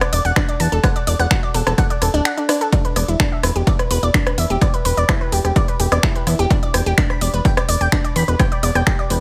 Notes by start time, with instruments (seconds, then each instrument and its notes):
0.01 synth pluck D5, cross-stick, closed hi-hat
0.13 analog synth bass E1, synth pluck D5, open hi-hat, ride
0.25 analog synth bass E1, synth pluck F#5, closed hi-hat
0.36 synth pluck D4, finger snap, kick, cross-stick, closed hi-hat, ride
0.49 synth pluck D5, closed hi-hat
0.60 analog synth bass E2, synth pluck A5, open hi-hat, ride
0.72 analog synth bass E1, synth pluck A4, closed hi-hat
0.84 synth pluck F#5, kick, cross-stick, closed hi-hat, ride
0.96 synth pluck D5, closed hi-hat
1.07 analog synth bass E1, synth pluck D5, open hi-hat, ride
1.19 analog synth bass E1, synth pluck F#5, cross-stick, closed hi-hat
1.31 synth pluck F#4, finger snap, kick, closed hi-hat, ride
1.43 synth pluck D5
1.54 analog synth bass E1, synth pluck A4, open hi-hat, ride
1.67 analog synth bass E1, synth pluck A4, cross-stick, closed hi-hat
1.78 synth pluck F#5, kick, closed hi-hat, ride
1.90 synth pluck D5, closed hi-hat
2.02 analog synth bass E1, synth pluck A4, cross-stick, open hi-hat, ride
2.14 analog synth bass D1, synth pluck D4, closed hi-hat
2.25 synth pluck F#5, finger snap, closed hi-hat, ride
2.38 synth pluck D4, closed hi-hat
2.49 synth pluck D4, cross-stick, open hi-hat, ride
2.61 synth pluck A4, closed hi-hat
2.73 synth pluck D4, kick, closed hi-hat, ride
2.85 synth pluck B4, closed hi-hat
2.96 analog synth bass E1, synth pluck D5, cross-stick, open hi-hat, ride
3.08 analog synth bass E1, synth pluck E4, closed hi-hat
3.20 synth pluck D4, finger snap, kick, closed hi-hat, ride
3.32 synth pluck E5
3.43 analog synth bass E1, synth pluck B4, cross-stick, open hi-hat, ride
3.56 analog synth bass E1, synth pluck G4, closed hi-hat
3.67 synth pluck D5, kick, closed hi-hat, ride
3.79 synth pluck B4, cross-stick, closed hi-hat
3.91 analog synth bass E1, synth pluck B4, open hi-hat, ride
4.03 analog synth bass E1, synth pluck D5, closed hi-hat
4.14 synth pluck D4, finger snap, kick, closed hi-hat, ride
4.27 synth pluck B4, cross-stick, closed hi-hat
4.38 analog synth bass E2, synth pluck E5, open hi-hat, ride
4.50 analog synth bass E1, synth pluck G4, closed hi-hat
4.61 synth pluck D5, kick, cross-stick, closed hi-hat, ride
4.74 synth pluck B4, closed hi-hat
4.85 analog synth bass E1, synth pluck B4, open hi-hat, ride
4.97 analog synth bass E1, synth pluck D5, closed hi-hat
5.09 synth pluck E4, finger snap, kick, cross-stick, closed hi-hat, ride
5.21 synth pluck B4
5.32 analog synth bass E1, synth pluck G4, open hi-hat, ride
5.45 analog synth bass E1, synth pluck G4, cross-stick, closed hi-hat
5.56 synth pluck D5, kick, closed hi-hat, ride
5.68 synth pluck B4, closed hi-hat
5.80 analog synth bass E1, synth pluck G4, open hi-hat, ride
5.92 analog synth bass E1, synth pluck D5, cross-stick, closed hi-hat
6.03 synth pluck E4, finger snap, kick, closed hi-hat, ride
6.15 synth pluck B4, closed hi-hat
6.27 analog synth bass E2, synth pluck E4, cross-stick, open hi-hat, ride
6.39 analog synth bass E1, synth pluck G4, closed hi-hat
6.50 synth pluck D4, kick, closed hi-hat, ride
6.63 synth pluck D5, closed hi-hat
6.74 analog synth bass E1, synth pluck G5, cross-stick, open hi-hat, ride
6.86 analog synth bass E1, synth pluck G4, closed hi-hat
6.98 synth pluck D4, finger snap, kick, closed hi-hat, ride
7.10 synth pluck B5, cross-stick
7.21 analog synth bass E1, synth pluck D5, open hi-hat, ride
7.34 analog synth bass E1, synth pluck B4, closed hi-hat
7.45 synth pluck G5, kick, closed hi-hat, ride
7.57 synth pluck D5, cross-stick, closed hi-hat
7.69 analog synth bass E1, synth pluck D5, open hi-hat, ride
7.81 analog synth bass E1, synth pluck G5, closed hi-hat
7.92 synth pluck D4, finger snap, kick, cross-stick, closed hi-hat, ride
8.04 synth pluck D5, closed hi-hat
8.16 analog synth bass E2, synth pluck B5, open hi-hat, ride
8.28 analog synth bass E1, synth pluck B4, closed hi-hat
8.39 synth pluck G5, kick, cross-stick, closed hi-hat, ride
8.52 synth pluck D5, closed hi-hat
8.63 analog synth bass E1, synth pluck D5, open hi-hat, ride
8.75 analog synth bass E1, synth pluck G5, cross-stick, closed hi-hat
8.87 synth pluck G4, finger snap, kick, closed hi-hat, ride
8.99 synth pluck D5
9.10 analog synth bass E1, synth pluck B4, open hi-hat, ride